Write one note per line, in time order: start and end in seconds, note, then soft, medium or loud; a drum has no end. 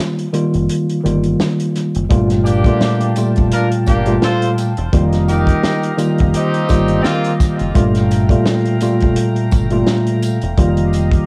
0.00 0.26 D#3 loud
0.00 0.27 G3 medium
0.00 0.27 A#3 medium
0.00 0.27 F4 loud
0.18 closed hi-hat medium
0.33 0.99 D#3 loud
0.33 0.99 G3 medium
0.33 1.00 A#3 medium
0.33 1.00 F4 loud
0.33 closed hi-hat medium
0.53 0.67 F1 medium
0.53 closed hi-hat soft
0.69 closed hi-hat loud
0.89 closed hi-hat medium
1.04 1.34 G1 medium
1.04 2.03 D#3 medium
1.04 2.03 G3 medium
1.04 2.03 A#3 medium
1.04 2.04 F4 medium
1.04 closed hi-hat medium
1.23 closed hi-hat soft
1.40 snare loud
1.40 snare medium
1.59 closed hi-hat medium
1.75 snare soft
1.75 closed hi-hat medium
1.95 2.08 F#1 medium
1.95 closed hi-hat medium
2.09 2.69 G1 loud
2.09 2.60 A#2 loud
2.09 2.61 G3 medium
2.09 2.61 A3 medium
2.09 2.61 F4 loud
2.09 7.71 F5 medium
2.09 4.89 G5 medium
2.09 4.89 A5 medium
2.09 kick loud
2.09 closed hi-hat medium
2.30 snare soft
2.30 closed hi-hat medium
2.44 3.11 A#3 medium
2.44 3.11 D4 medium
2.44 3.11 G4 loud
2.44 closed hi-hat medium
2.44 tambourine medium
2.64 3.12 A#2 medium
2.64 3.13 G3 medium
2.64 3.13 A3 loud
2.64 3.13 F4 loud
2.64 kick medium
2.64 closed hi-hat medium
2.81 snare loud
2.81 snare medium
3.01 closed hi-hat medium
3.16 3.99 A#2 medium
3.16 3.99 G3 medium
3.16 3.99 A3 medium
3.16 4.00 F4 loud
3.16 closed hi-hat medium
3.16 tambourine medium
3.36 3.50 F1 medium
3.36 kick medium
3.36 closed hi-hat soft
3.51 3.68 D4 medium
3.51 3.68 F4 medium
3.51 3.68 A#4 loud
3.51 closed hi-hat loud
3.71 closed hi-hat medium
3.86 4.17 G1 medium
3.86 4.15 A#3 medium
3.86 4.15 D4 medium
3.86 4.15 G4 loud
3.86 kick loud
3.86 closed hi-hat medium
3.86 tambourine medium
4.06 4.71 A#2 loud
4.06 4.71 G3 medium
4.06 4.71 A3 medium
4.06 4.72 F4 loud
4.06 closed hi-hat soft
4.22 4.51 F4 loud
4.22 4.51 A4 loud
4.22 4.51 C5 loud
4.22 snare loud
4.22 snare medium
4.42 closed hi-hat medium
4.58 closed hi-hat medium
4.58 tambourine medium
4.77 4.91 E1 medium
4.77 closed hi-hat medium
4.92 5.52 F1 loud
4.92 5.91 D#3 loud
4.92 5.91 G3 medium
4.92 5.92 A#3 medium
4.92 5.92 F4 loud
4.92 7.72 G4 medium
4.92 7.72 D#5 medium
4.92 7.72 A#5 medium
4.92 kick loud
4.92 closed hi-hat medium
5.12 snare soft
5.12 closed hi-hat medium
5.28 5.95 D#4 loud
5.28 5.95 G4 medium
5.28 5.95 A#4 loud
5.28 closed hi-hat medium
5.28 tambourine soft
5.47 kick medium
5.47 closed hi-hat medium
5.63 snare loud
5.63 snare medium
5.83 closed hi-hat medium
5.98 6.64 D#3 loud
5.98 6.64 G3 medium
5.98 6.64 A#3 medium
5.98 6.65 F4 loud
5.98 closed hi-hat medium
5.98 tambourine medium
6.18 6.32 F1 medium
6.18 kick medium
6.18 closed hi-hat soft
6.34 7.01 C4 loud
6.34 7.01 D#4 loud
6.34 7.01 G4 loud
6.34 closed hi-hat loud
6.54 closed hi-hat medium
6.69 6.99 G1 medium
6.69 7.67 D#3 loud
6.69 7.68 G3 medium
6.69 7.68 A#3 medium
6.69 7.68 F4 loud
6.69 kick medium
6.69 closed hi-hat medium
6.69 tambourine medium
6.88 closed hi-hat soft
7.03 7.32 A#3 loud
7.03 7.32 C4 loud
7.03 7.32 F4 loud
7.03 snare loud
7.03 snare medium
7.24 closed hi-hat medium
7.40 kick loud
7.40 snare soft
7.40 closed hi-hat medium
7.40 tambourine medium
7.59 7.73 F#1 medium
7.59 closed hi-hat medium
7.74 8.34 G1 loud
7.74 8.25 A#2 loud
7.74 8.25 G3 medium
7.74 8.26 A3 loud
7.74 10.55 A3 medium
7.74 8.26 F4 loud
7.74 10.55 F5 medium
7.74 10.55 G5 medium
7.74 11.26 A#5 loud
7.74 kick loud
7.74 closed hi-hat medium
7.95 snare soft
7.95 closed hi-hat medium
8.11 closed hi-hat medium
8.11 tambourine soft
8.29 8.77 A#2 medium
8.29 8.77 G3 medium
8.29 8.77 A3 loud
8.29 8.78 F4 loud
8.29 kick medium
8.29 closed hi-hat soft
8.46 snare loud
8.46 snare medium
8.65 closed hi-hat medium
8.80 9.64 A#2 medium
8.80 9.64 G3 medium
8.80 9.64 A3 medium
8.80 9.64 F4 loud
8.80 closed hi-hat medium
8.80 tambourine medium
9.00 9.15 F1 medium
9.00 kick loud
9.00 closed hi-hat soft
9.16 closed hi-hat loud
9.36 closed hi-hat medium
9.51 9.81 G1 medium
9.51 kick loud
9.51 closed hi-hat medium
9.51 tambourine medium
9.70 10.35 A#2 loud
9.70 10.36 G3 medium
9.70 10.36 A3 medium
9.70 10.36 F4 loud
9.70 closed hi-hat soft
9.87 snare loud
9.87 snare medium
10.06 closed hi-hat medium
10.22 closed hi-hat medium
10.22 tambourine medium
10.41 10.55 E1 medium
10.41 closed hi-hat medium
10.57 11.16 F1 loud
10.57 11.26 D#3 loud
10.57 11.26 G3 medium
10.57 11.26 A#3 medium
10.57 11.26 F4 loud
10.57 11.26 G4 medium
10.57 11.26 D#5 medium
10.57 11.26 F5 medium
10.57 kick loud
10.57 closed hi-hat medium
10.77 closed hi-hat medium
10.93 closed hi-hat medium
10.93 tambourine medium
11.12 kick medium
11.12 closed hi-hat medium